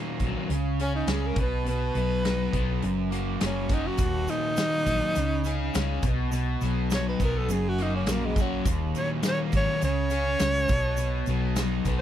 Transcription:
Already playing: distorted electric guitar D#2 F#3 A#3, overdriven electric guitar D#2 A#2 D#3
0.19 fingered electric bass A#1, distorted electric guitar F#3, kick, closed hi-hat
0.24 overdriven electric guitar F#3
0.49 fingered electric bass C#2, distorted electric guitar C#3, overdriven electric guitar C#3, closed hi-hat
0.79 distorted electric guitar C#4, tenor saxophone C#4, overdriven electric guitar G#4, closed hi-hat
0.95 tenor saxophone D#4
1.07 fingered electric bass C#2, distorted electric guitar G#3, overdriven electric guitar C#4, snare, closed hi-hat
1.12 tenor saxophone G#4
1.27 tenor saxophone A#4
1.36 fingered electric bass B1, distorted electric guitar B2, kick, closed hi-hat
1.40 overdriven electric guitar B2, tenor saxophone B4
1.65 distorted electric guitar B2, overdriven electric guitar B2, tenor saxophone B4, closed hi-hat
1.94 fingered electric bass B1, overdriven electric guitar F#3, distorted electric guitar B3, closed hi-hat
2.23 overdriven electric guitar F#3, distorted electric guitar D#4, snare, closed hi-hat
2.53 fingered electric bass B1, distorted electric guitar B3, overdriven electric guitar B3, kick, closed hi-hat
2.80 fingered electric bass F#1, distorted electric guitar F#2, overdriven electric guitar F#2, closed hi-hat
3.10 distorted electric guitar A#3, overdriven electric guitar F#4, closed hi-hat
3.40 fingered electric bass F#1, distorted electric guitar F#3, overdriven electric guitar A#3, snare, closed hi-hat
3.45 tenor saxophone C#4
3.69 distorted electric guitar C#4, overdriven electric guitar F#4, kick, snare, closed hi-hat
3.74 tenor saxophone D#4
3.87 tenor saxophone F#4
3.97 fingered electric bass D#1, distorted electric guitar D#2, overdriven electric guitar D#2, kick, closed hi-hat, shaker
4.28 overdriven electric guitar A#2, distorted electric guitar F#3, tenor saxophone D#4, closed hi-hat, shaker
4.57 overdriven electric guitar D#3, distorted electric guitar A#3, snare, closed hi-hat, shaker
4.86 fingered electric bass A#1, distorted electric guitar F#3, overdriven electric guitar F#3, kick, closed hi-hat, shaker
5.15 fingered electric bass C#2, distorted electric guitar C#3, overdriven electric guitar C#3, closed hi-hat, shaker
5.44 distorted electric guitar C#4, overdriven electric guitar G#4, closed hi-hat, shaker
5.74 fingered electric bass C#2, distorted electric guitar G#3, overdriven electric guitar C#4, snare, closed hi-hat, shaker
6.03 fingered electric bass B1, distorted electric guitar B2, overdriven electric guitar B2, kick, closed hi-hat, shaker
6.32 distorted electric guitar B2, overdriven electric guitar B2, closed hi-hat, shaker
6.61 fingered electric bass B1, overdriven electric guitar F#3, distorted electric guitar B3, closed hi-hat, shaker
6.90 overdriven electric guitar F#3, distorted electric guitar D#4, tenor saxophone C#5, snare, closed hi-hat, shaker
7.09 tenor saxophone B4
7.19 fingered electric bass B1, distorted electric guitar B3, overdriven electric guitar B3, kick, closed hi-hat, shaker
7.24 tenor saxophone A#4
7.38 tenor saxophone A4
7.48 fingered electric bass F#1, distorted electric guitar F#2, overdriven electric guitar F#2, tenor saxophone G#4, closed hi-hat, shaker
7.69 tenor saxophone F#4
7.78 distorted electric guitar A#3, overdriven electric guitar F#4, closed hi-hat
7.83 tenor saxophone D#4
7.96 tenor saxophone C#4
8.06 fingered electric bass A#1, distorted electric guitar F#3, overdriven electric guitar A#3, snare, closed hi-hat, shaker
8.11 tenor saxophone A#3
8.26 tenor saxophone G#3
8.36 distorted electric guitar C#4, overdriven electric guitar F#4, kick, closed hi-hat, shaker
8.41 tenor saxophone F#3
8.65 fingered electric bass D#1, distorted electric guitar D#2, overdriven electric guitar D#2, kick, closed hi-hat, shaker
8.95 overdriven electric guitar A#2, distorted electric guitar F#3, tenor saxophone C#5, closed hi-hat, shaker
9.22 overdriven electric guitar D#3, distorted electric guitar A#3, snare, closed hi-hat, shaker
9.28 tenor saxophone C#5
9.52 fingered electric bass G#1, distorted electric guitar F#3, overdriven electric guitar F#3, tenor saxophone C#5, kick, closed hi-hat, shaker
9.81 fingered electric bass C#2, distorted electric guitar C#3, overdriven electric guitar C#3, tenor saxophone C#5, closed hi-hat, shaker
10.10 distorted electric guitar C#4, overdriven electric guitar G#4, closed hi-hat, shaker
10.39 fingered electric bass C#2, distorted electric guitar G#3, overdriven electric guitar C#4, snare, closed hi-hat, shaker
10.68 fingered electric bass B1, overdriven electric guitar B2, distorted electric guitar B2, kick, closed hi-hat, shaker
10.97 overdriven electric guitar B2, distorted electric guitar B2, closed hi-hat, shaker
11.26 fingered electric bass B1, overdriven electric guitar F#3, distorted electric guitar B3, closed hi-hat, shaker
11.56 overdriven electric guitar F#3, distorted electric guitar D#4, snare, closed hi-hat, shaker
11.85 fingered electric bass B1, distorted electric guitar B3, overdriven electric guitar B3, kick, closed hi-hat, shaker

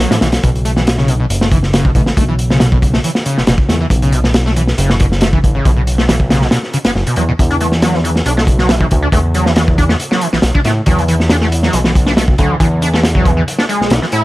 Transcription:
0.00 acid bass F#3, closed hi-hat
0.11 analog synth bass A2, acid bass E3, snare, closed hi-hat
0.21 analog synth bass B1, acid bass E3, snare, closed hi-hat
0.32 snare, closed hi-hat
0.43 analog synth bass B1, acid bass B2, kick, closed hi-hat
0.55 closed hi-hat
0.65 acid bass A3, closed hi-hat
0.76 acid bass E3, snare
0.87 snare, closed hi-hat
0.98 acid bass C#3, snare
1.08 acid bass B2, closed hi-hat
1.20 acid bass B2
1.30 analog synth bass F#1, closed hi-hat
1.41 acid bass A3, snare
1.51 acid bass E3, kick, closed hi-hat
1.63 snare
1.73 acid bass C#3, snare, closed hi-hat
1.85 acid bass B2, kick
1.95 analog synth bass A1, acid bass B2, kick, closed hi-hat
2.06 snare
2.17 analog synth bass B1, acid bass A3, kick, closed hi-hat
2.28 acid bass E3
2.39 closed hi-hat
2.50 acid bass C#3, snare
2.60 acid bass B2, snare, closed hi-hat
2.72 acid bass B2, kick
2.82 kick, closed hi-hat
2.94 acid bass A3, snare
3.04 acid bass E3, closed hi-hat
3.15 snare
3.26 acid bass C#3, closed hi-hat
3.37 analog synth bass F#1, acid bass B2, snare
3.47 analog synth bass F#1, acid bass B2, snare, closed hi-hat
3.58 kick
3.69 analog synth bass E2, acid bass A3, snare, closed hi-hat
3.81 acid bass E3
3.90 analog synth bass B1, kick, closed hi-hat
4.02 acid bass C#3, closed hi-hat
4.12 acid bass B2, closed hi-hat
4.24 acid bass B2, snare
4.34 snare, closed hi-hat
4.46 acid bass A3, snare
4.56 acid bass E3, closed hi-hat
4.67 snare
4.78 analog synth bass F#1, acid bass C#3, closed hi-hat
4.89 acid bass B2, snare
5.00 acid bass B2, kick, closed hi-hat
5.12 snare
5.21 acid bass A3, snare, closed hi-hat
5.33 acid bass E3, kick
5.44 analog synth bass A1, kick, closed hi-hat
5.55 acid bass C#3
5.65 analog synth bass B1, acid bass B2, kick, closed hi-hat
5.76 acid bass B2
5.87 closed hi-hat
5.98 acid bass A3, snare
6.08 acid bass E3, snare, closed hi-hat
6.20 kick
6.30 acid bass C#3, snare, closed hi-hat
6.42 acid bass B2, snare
6.51 acid bass B2, snare, closed hi-hat
6.63 snare
6.74 acid bass C#3, closed hi-hat
6.85 analog synth bass F#1, acid bass B3, snare, closed hi-hat
6.95 analog synth bass F#1, snare
7.07 acid bass B2, closed hi-hat
7.16 analog synth bass E2, acid bass F#3, closed hi-hat
7.29 acid bass B2
7.39 analog synth bass E2, kick, closed hi-hat
7.51 acid bass D4, closed hi-hat
7.60 acid bass A3, closed hi-hat
7.72 snare
7.82 acid bass F#3, snare, closed hi-hat
7.94 acid bass E3, snare
8.04 acid bass E3, closed hi-hat
8.16 snare
8.26 analog synth bass B1, acid bass D4, closed hi-hat
8.37 acid bass A3, snare
8.47 kick, closed hi-hat
8.59 acid bass F#3, snare
8.69 acid bass E3, snare, closed hi-hat
8.81 acid bass E3, kick
8.91 analog synth bass D2, kick, closed hi-hat
9.02 acid bass D4
9.12 analog synth bass E2, acid bass A3, kick, closed hi-hat
9.34 acid bass F#3, closed hi-hat
9.46 acid bass E3, snare
9.56 acid bass E3, snare, closed hi-hat
9.68 kick
9.78 acid bass D4, kick, closed hi-hat
9.89 acid bass A3, snare
10.00 closed hi-hat
10.11 acid bass F#3, snare
10.21 acid bass E3, closed hi-hat
10.33 analog synth bass B1, acid bass E3, snare
10.42 analog synth bass B1, snare, closed hi-hat
10.55 acid bass D4, kick
10.65 analog synth bass A2, acid bass A3, snare, closed hi-hat
10.86 analog synth bass E2, acid bass F#3, kick, closed hi-hat
10.98 acid bass E3, closed hi-hat
11.08 acid bass E3, closed hi-hat
11.20 snare
11.29 acid bass D4, snare, closed hi-hat
11.41 acid bass A3, snare
11.52 closed hi-hat
11.63 acid bass F#3, snare
11.73 analog synth bass B1, acid bass E3, closed hi-hat
11.84 acid bass E3, snare
11.95 kick, closed hi-hat
12.06 acid bass D4, snare
12.17 acid bass A3, snare, closed hi-hat
12.28 kick
12.38 analog synth bass D2, acid bass F#3, kick, closed hi-hat
12.50 acid bass E3
12.60 analog synth bass E2, acid bass E3, kick, closed hi-hat
12.82 acid bass D4, closed hi-hat
12.93 acid bass A3, snare
13.03 snare, closed hi-hat
13.15 acid bass F#3, kick
13.25 acid bass E3, kick, closed hi-hat
13.37 acid bass E3
13.48 closed hi-hat
13.59 acid bass D4, snare
13.69 acid bass G#3, closed hi-hat
13.81 analog synth bass B1, snare
13.90 analog synth bass B1, acid bass E4, snare, closed hi-hat
14.02 acid bass E3, snare
14.12 analog synth bass A2, acid bass E4, closed hi-hat

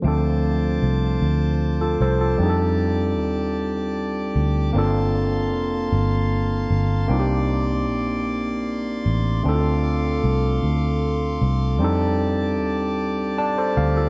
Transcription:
0.02 fingered electric bass D2, tine electric piano F3 A3 C4, pipe organ F4 C5 A5 D6
0.07 tine electric piano D4 A4
0.82 fingered electric bass C2
1.21 fingered electric bass D2
1.81 tine electric piano F4 A4
2.00 fingered electric bass C2, tine electric piano A4 C5
2.21 tine electric piano F4 A4
2.38 fingered electric bass F2, tine electric piano G3 C4 D4 D#4, pipe organ G4 D5
2.43 tine electric piano G#4
2.50 tine electric piano A4
3.18 fingered electric bass D#2
4.36 fingered electric bass D2
4.73 fingered electric bass G1, tine electric piano A#3 C4 D4, pipe organ A#3 F5 C6
4.77 tine electric piano F4 A4
5.53 fingered electric bass F1
5.92 fingered electric bass G1
6.70 fingered electric bass G1
7.08 fingered electric bass C2, tine electric piano A#3 C4 D4 D#4, pipe organ D5 D6
7.13 tine electric piano F4
7.20 tine electric piano G4
7.88 fingered electric bass A#1
9.06 fingered electric bass A1
9.43 fingered electric bass D2, tine electric piano A3 C4 D4, pipe organ A4 F5 D6
9.47 tine electric piano D#4 A4
9.54 tine electric piano F4
10.24 fingered electric bass C2
10.63 fingered electric bass D2
11.41 fingered electric bass C2
11.79 fingered electric bass F2, tine electric piano G3 C4 D4 D#4, pipe organ G4 D5 A5
11.84 tine electric piano A4
12.59 fingered electric bass D#2
13.38 tine electric piano D5 A5
13.58 tine electric piano A4 C5
13.77 fingered electric bass D2, tine electric piano F5
13.97 tine electric piano F4 A4

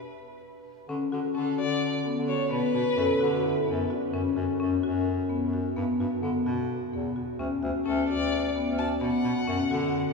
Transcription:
Already playing: violin B4
0.89 bass clarinet D3, marimba C#4
1.12 bass clarinet D3, marimba F#4
1.34 bass clarinet D3, marimba C#4, violin A4
1.58 bass clarinet D3, marimba F#4, violin D5
2.05 marimba B3
2.16 bass clarinet D3
2.27 marimba F#4, violin C#5
2.51 bass clarinet B2, marimba B3, violin B4
2.74 bass clarinet B2, marimba F#4
2.97 bass clarinet F#2, marimba C#4, french horn A4
3.21 bass clarinet D3, marimba F#4
3.33 french horn F#4
3.44 french horn E4
3.67 bass clarinet F#2, marimba B3
3.90 french horn D4, marimba F#4
4.07 french horn C4
4.13 bass clarinet F#2, french horn C#4, marimba C#4
4.36 bass clarinet F#2, marimba F#4
4.60 bass clarinet F#2, marimba C#4
4.83 bass clarinet F#2, marimba F#4
5.29 marimba B3
5.41 bass clarinet F#2
5.53 marimba F#4
5.76 bass clarinet G2, marimba B3
5.99 bass clarinet G2, marimba F#4
6.22 bass clarinet D3, marimba B3
6.45 bass clarinet B2, marimba F#4
6.92 bass clarinet E2, marimba B3
7.16 marimba F#4
7.39 bass clarinet D2, marimba C#4
7.63 bass clarinet D2, marimba F#4
7.85 bass clarinet D2, marimba C#4, violin A4
8.08 bass clarinet D2, marimba F#4, violin D5
8.56 marimba B3
8.66 bass clarinet D2
8.78 marimba F#4, violin A5
9.01 bass clarinet B2, marimba B3, violin F#5
9.24 bass clarinet B2, marimba F#4
9.47 bass clarinet F#2, marimba C#4
9.71 bass clarinet D3, marimba F#4

